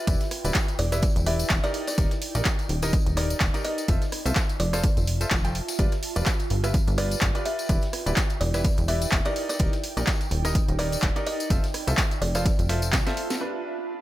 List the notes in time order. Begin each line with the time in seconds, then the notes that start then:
Already playing: B4 G5
0.07 E1 E4 G4 B4 D5, kick, closed hi-hat, tambourine
0.20 snare, closed hi-hat, tambourine
0.31 cross-stick, closed hi-hat, open hi-hat
0.45 D1 E4 G4 B4 D5, closed hi-hat, tambourine
0.53 D5, kick, snare, clap, closed hi-hat, tambourine
0.68 closed hi-hat, tambourine
0.79 E1 D5, closed hi-hat, open hi-hat
0.92 E4 G4 B4 D5 E5, cross-stick, snare, closed hi-hat, tambourine
1.02 kick, closed hi-hat, tambourine
1.16 E1, closed hi-hat, tambourine
1.26 E4 G4 B4 D5 E5, closed hi-hat, open hi-hat
1.39 closed hi-hat, tambourine
1.50 E1, kick, snare, clap, closed hi-hat, tambourine
1.64 D#4 G4 A#4 D5, closed hi-hat, tambourine
1.74 D#4, closed hi-hat, open hi-hat
1.87 D5, snare, closed hi-hat, tambourine
1.98 D#1 D#4 G4 A#4 D5, kick, closed hi-hat, tambourine
2.11 snare, closed hi-hat, tambourine
2.22 closed hi-hat, open hi-hat
2.35 A#1 D#4 G4 A#4 D5, closed hi-hat, tambourine
2.45 kick, snare, clap, closed hi-hat, tambourine
2.59 closed hi-hat, tambourine
2.69 D#1, closed hi-hat, open hi-hat
2.82 D#4 G4 A#4 D#5, cross-stick, closed hi-hat, tambourine
2.93 kick, closed hi-hat, tambourine
3.06 D#1, closed hi-hat, tambourine
3.17 D#4 G4 A#4 D5, cross-stick, closed hi-hat, open hi-hat
3.30 closed hi-hat, tambourine
3.40 D#1, kick, snare, clap, closed hi-hat, tambourine
3.54 D#4 G4 A#4 D5, closed hi-hat, tambourine
3.64 D#5, closed hi-hat, open hi-hat
3.78 closed hi-hat, tambourine
3.88 F1 F4 A4 C5 E5, kick, closed hi-hat, tambourine
4.02 snare, closed hi-hat, tambourine
4.12 cross-stick, closed hi-hat, open hi-hat
4.22 C2 F4 A4 C5 E5, closed hi-hat, tambourine
4.33 A5, kick, snare, clap, closed hi-hat, tambourine
4.49 closed hi-hat, tambourine
4.60 F1 D5, closed hi-hat, open hi-hat
4.73 F4 A4 C5 D5 F5, cross-stick, snare, closed hi-hat, tambourine
4.84 kick, closed hi-hat, tambourine
4.97 F1, closed hi-hat, tambourine
5.07 closed hi-hat, open hi-hat
5.21 F4 A4 C5 E5, closed hi-hat, tambourine
5.31 F1, kick, snare, clap, closed hi-hat, tambourine
5.45 F4 A4 C5 G5, closed hi-hat, tambourine
5.55 closed hi-hat, open hi-hat
5.68 snare, closed hi-hat, tambourine
5.79 G1 F4 G4 B4 D5, kick, closed hi-hat, tambourine
5.92 snare, closed hi-hat, tambourine
6.00 G5, closed hi-hat, open hi-hat
6.11 B4
6.16 F1 F4 G4 B4 D5, closed hi-hat, tambourine
6.26 kick, snare, clap, closed hi-hat, tambourine
6.39 closed hi-hat, tambourine
6.50 G1, closed hi-hat, open hi-hat
6.64 F4 G4 B4 E5, cross-stick, closed hi-hat, tambourine
6.74 kick, closed hi-hat, tambourine
6.87 G1, closed hi-hat, tambourine
6.98 F4 G4 B4 D5, cross-stick, closed hi-hat, open hi-hat
7.11 closed hi-hat, tambourine
7.21 G1, kick, snare, clap, closed hi-hat, tambourine
7.35 F4 G4 B4 D5, closed hi-hat, tambourine
7.45 E5, closed hi-hat, open hi-hat
7.59 closed hi-hat, tambourine
7.69 E1 E4 G4 B4 D5, kick, closed hi-hat, tambourine
7.81 snare, closed hi-hat, tambourine
7.93 cross-stick, closed hi-hat, open hi-hat
8.06 D1 E4 G4 B4 D5, closed hi-hat, tambourine
8.16 kick, snare, clap, closed hi-hat, tambourine
8.30 closed hi-hat, tambourine
8.41 E1 D5, closed hi-hat, open hi-hat
8.54 E4 G4 B4 D5 E5, cross-stick, snare, closed hi-hat, tambourine
8.64 kick, closed hi-hat, tambourine
8.78 E1, closed hi-hat, tambourine
8.88 E4 G4 B4 D5 E5, closed hi-hat, open hi-hat
9.02 closed hi-hat, tambourine
9.12 E1, kick, snare, clap, closed hi-hat
9.25 D#4 G4 A#4 D5, closed hi-hat, tambourine
9.36 D#4, closed hi-hat, open hi-hat
9.49 D5, snare, closed hi-hat, tambourine
9.59 D#1 D#4 G4 A#4 D5, kick, closed hi-hat, tambourine
9.73 snare, closed hi-hat, tambourine
9.84 closed hi-hat, open hi-hat
9.97 A#1 D#4 G4 A#4 D5, closed hi-hat, tambourine
10.07 kick, snare, clap, closed hi-hat, tambourine
10.21 closed hi-hat, tambourine
10.31 D#1, closed hi-hat, open hi-hat
10.45 D#4 G4 A#4 D#5, cross-stick, closed hi-hat, tambourine
10.55 kick, closed hi-hat, tambourine
10.68 D#1, closed hi-hat, tambourine
10.79 D#4 G4 A#4 D5, cross-stick, closed hi-hat, open hi-hat
10.92 closed hi-hat, tambourine
11.02 D#1, kick, snare, clap, closed hi-hat, tambourine
11.16 D#4 G4 A#4 D5, closed hi-hat, tambourine
11.27 D#5, closed hi-hat, open hi-hat
11.40 closed hi-hat, tambourine
11.50 F1 F4 A4 C5 E5, kick, closed hi-hat, tambourine
11.64 snare, closed hi-hat, tambourine
11.74 cross-stick, closed hi-hat, open hi-hat
11.87 C2 F4 A4 C5 E5, closed hi-hat, tambourine
11.97 kick, snare, clap, closed hi-hat, tambourine
12.11 closed hi-hat, tambourine
12.22 F1 D5 A5, open hi-hat
12.35 F4 A4 C5 D5 F5, cross-stick, closed hi-hat, tambourine
12.45 kick, closed hi-hat, tambourine
12.59 F1, closed hi-hat, tambourine
12.69 F4 A4 C5 E5, snare, closed hi-hat, open hi-hat
12.82 closed hi-hat, tambourine
12.93 C2, kick, snare, clap, closed hi-hat, tambourine
13.06 F4 A4 C5 E5, snare, closed hi-hat, tambourine
13.17 closed hi-hat, open hi-hat
13.30 snare, closed hi-hat, tambourine
13.41 D4 F4 G4 B4
13.69 B4